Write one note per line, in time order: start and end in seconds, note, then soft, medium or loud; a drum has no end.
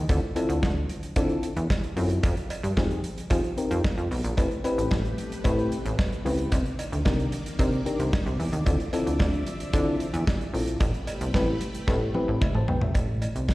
0.09 0.20 D2 loud
0.09 0.20 C4 medium
0.09 0.20 E4 medium
0.09 0.20 F4 medium
0.09 0.20 A4 loud
0.09 kick loud
0.09 closed hi-hat loud
0.09 cowbell medium
0.36 0.69 C4 loud
0.36 0.69 E4 loud
0.36 0.69 F4 loud
0.36 0.69 A4 loud
0.36 closed hi-hat medium
0.36 cowbell medium
0.49 0.60 D2 medium
0.49 closed hi-hat medium
0.63 0.85 D2 loud
0.63 kick loud
0.63 snare loud
0.63 cowbell medium
0.89 closed hi-hat medium
1.03 closed hi-hat medium
1.16 1.38 D3 medium
1.16 1.49 C4 loud
1.16 1.49 E4 loud
1.16 1.49 F4 medium
1.16 1.50 A4 loud
1.16 kick loud
1.16 closed hi-hat loud
1.16 cowbell medium
1.29 closed hi-hat soft
1.43 closed hi-hat medium
1.57 1.68 E2 loud
1.57 closed hi-hat medium
1.70 kick loud
1.70 snare loud
1.70 cowbell medium
1.84 closed hi-hat soft
1.96 2.19 F#2 loud
1.96 2.23 C4 medium
1.96 2.24 E4 medium
1.96 2.24 F4 medium
1.96 2.24 A4 medium
1.96 open hi-hat medium
2.10 closed hi-hat medium
2.23 2.35 F2 loud
2.23 kick loud
2.23 closed hi-hat loud
2.23 cowbell medium
2.37 closed hi-hat soft
2.50 closed hi-hat medium
2.50 cowbell medium
2.63 2.75 G2 medium
2.63 closed hi-hat medium
2.77 2.99 F2 medium
2.77 2.99 C4 medium
2.77 2.99 D#4 medium
2.77 2.99 G4 medium
2.77 2.99 G#4 loud
2.77 kick loud
2.77 snare loud
2.77 cowbell medium
2.91 closed hi-hat soft
3.04 closed hi-hat medium
3.18 closed hi-hat medium
3.30 3.53 F3 loud
3.30 3.41 C4 medium
3.30 3.42 D#4 medium
3.30 3.42 G4 medium
3.30 3.42 G#4 loud
3.30 kick loud
3.30 closed hi-hat loud
3.30 cowbell medium
3.44 closed hi-hat soft
3.57 3.90 C4 medium
3.57 3.90 D#4 medium
3.57 3.90 G4 medium
3.57 3.91 A#4 loud
3.57 closed hi-hat medium
3.71 3.82 F2 loud
3.71 closed hi-hat medium
3.84 kick loud
3.84 snare loud
3.84 cowbell medium
3.98 4.09 F2 medium
3.98 closed hi-hat soft
4.11 4.22 B1 medium
4.11 open hi-hat medium
4.24 4.35 A#1 medium
4.24 closed hi-hat medium
4.37 4.49 A1 loud
4.37 6.50 C3 medium
4.37 6.50 A3 medium
4.37 4.49 C4 medium
4.37 4.49 E4 medium
4.37 4.49 G4 medium
4.37 6.50 G4 loud
4.37 6.50 B4 medium
4.37 4.49 B4 medium
4.37 kick loud
4.37 closed hi-hat loud
4.37 cowbell medium
4.51 closed hi-hat soft
4.64 4.97 C4 loud
4.64 4.97 E4 medium
4.64 4.97 G4 medium
4.64 4.98 B4 loud
4.64 closed hi-hat medium
4.64 cowbell medium
4.78 4.89 A1 medium
4.78 closed hi-hat medium
4.91 5.13 A1 loud
4.91 kick loud
4.91 snare loud
4.91 cowbell medium
5.05 closed hi-hat soft
5.18 closed hi-hat medium
5.32 closed hi-hat medium
5.44 5.67 A2 loud
5.44 5.77 C4 loud
5.44 5.78 E4 medium
5.44 5.78 G4 medium
5.44 5.78 B4 loud
5.44 kick loud
5.44 closed hi-hat loud
5.44 cowbell medium
5.59 closed hi-hat soft
5.72 closed hi-hat medium
5.86 5.96 A1 loud
5.86 closed hi-hat medium
5.99 kick loud
5.99 snare loud
5.99 cowbell medium
6.12 closed hi-hat soft
6.25 6.48 C#2 medium
6.25 6.52 C4 medium
6.25 6.52 E4 medium
6.25 6.52 G4 medium
6.25 6.52 B4 medium
6.25 open hi-hat medium
6.39 closed hi-hat medium
6.52 6.63 C2 loud
6.52 12.91 C3 medium
6.52 8.64 D#3 medium
6.52 8.64 A#3 medium
6.52 10.77 D5 medium
6.52 kick loud
6.52 closed hi-hat loud
6.52 cowbell medium
6.66 closed hi-hat soft
6.79 closed hi-hat medium
6.79 cowbell medium
6.92 7.03 D2 medium
6.92 closed hi-hat medium
7.05 7.28 C2 loud
7.05 7.27 D4 medium
7.05 7.27 D#4 medium
7.05 7.28 G4 medium
7.05 7.28 A#4 loud
7.05 kick loud
7.05 snare loud
7.05 cowbell medium
7.19 closed hi-hat soft
7.32 closed hi-hat medium
7.46 closed hi-hat medium
7.59 7.81 C3 medium
7.59 7.70 D4 medium
7.59 7.70 D#4 medium
7.59 7.70 G4 medium
7.59 7.70 A#4 loud
7.59 kick loud
7.59 closed hi-hat loud
7.59 cowbell medium
7.73 closed hi-hat soft
7.85 8.19 D4 medium
7.85 8.19 D#4 medium
7.85 8.19 G4 medium
7.85 8.19 A#4 loud
7.85 closed hi-hat medium
7.99 8.11 C2 medium
7.99 closed hi-hat medium
8.13 kick loud
8.13 snare loud
8.13 cowbell medium
8.26 8.37 C2 medium
8.26 closed hi-hat soft
8.40 8.51 E2 medium
8.40 open hi-hat medium
8.53 8.64 D#2 medium
8.53 closed hi-hat medium
8.66 8.78 D2 loud
8.66 10.79 F3 medium
8.66 8.77 C4 medium
8.66 8.77 E4 medium
8.66 8.78 F4 medium
8.66 8.78 A4 loud
8.66 10.79 E5 loud
8.66 kick loud
8.66 closed hi-hat loud
8.66 cowbell medium
8.80 closed hi-hat soft
8.93 9.26 C4 loud
8.93 9.26 E4 medium
8.93 9.26 F4 medium
8.93 9.26 A4 loud
8.93 closed hi-hat medium
8.93 cowbell medium
9.07 9.18 D2 medium
9.07 closed hi-hat medium
9.19 9.42 D2 loud
9.19 kick loud
9.19 snare loud
9.19 cowbell medium
9.34 closed hi-hat soft
9.46 closed hi-hat medium
9.60 closed hi-hat medium
9.73 9.96 D3 loud
9.73 10.06 C4 loud
9.73 10.06 E4 loud
9.73 10.06 F4 medium
9.73 10.07 A4 loud
9.73 kick loud
9.73 closed hi-hat loud
9.73 cowbell medium
10.00 closed hi-hat medium
10.14 10.25 E2 loud
10.14 closed hi-hat medium
10.27 kick loud
10.27 snare loud
10.27 cowbell medium
10.41 closed hi-hat soft
10.53 10.76 A#1 medium
10.53 10.81 C4 medium
10.53 10.81 E4 medium
10.53 10.81 F4 medium
10.53 10.81 A4 medium
10.53 open hi-hat medium
10.67 closed hi-hat medium
10.80 10.92 A1 loud
10.80 12.93 A3 medium
10.80 12.93 G4 medium
10.80 12.93 B4 medium
10.80 kick loud
10.80 closed hi-hat medium
10.80 cowbell medium
10.94 closed hi-hat soft
11.07 closed hi-hat medium
11.07 cowbell medium
11.21 11.32 C2 medium
11.21 closed hi-hat medium
11.34 11.56 A1 loud
11.34 11.56 C4 medium
11.34 11.56 E4 medium
11.34 11.56 G4 medium
11.34 11.56 B4 loud
11.34 kick loud
11.34 snare loud
11.34 cowbell medium
11.61 closed hi-hat medium
11.75 closed hi-hat medium
11.87 12.10 A2 medium
11.87 11.99 C4 loud
11.87 11.99 E4 medium
11.87 11.99 G4 medium
11.87 11.99 B4 loud
11.87 kick loud
11.87 snare medium
11.87 cowbell medium
12.14 12.47 C4 loud
12.14 12.47 E4 medium
12.14 12.41 G4 medium
12.14 12.42 B4 loud
12.14 high tom medium
12.28 12.39 A1 loud
12.41 12.54 G4 medium
12.41 12.54 E5 medium
12.41 kick loud
12.41 mid tom loud
12.41 cowbell medium
12.55 12.66 A1 medium
12.55 12.68 C5 medium
12.55 12.68 A5 medium
12.55 mid tom medium
12.68 12.79 B1 medium
12.68 12.81 B4 medium
12.68 12.81 G5 medium
12.68 floor tom loud
12.81 12.93 A#1 medium
12.81 13.07 G4 soft
12.81 13.07 E5 medium
12.81 floor tom loud
12.95 13.28 A1 loud
12.95 kick loud
12.95 closed hi-hat loud
12.95 cowbell medium
13.22 closed hi-hat medium
13.22 cowbell medium
13.36 13.54 C2 medium
13.36 closed hi-hat medium
13.48 kick medium
13.48 snare loud
13.48 cowbell medium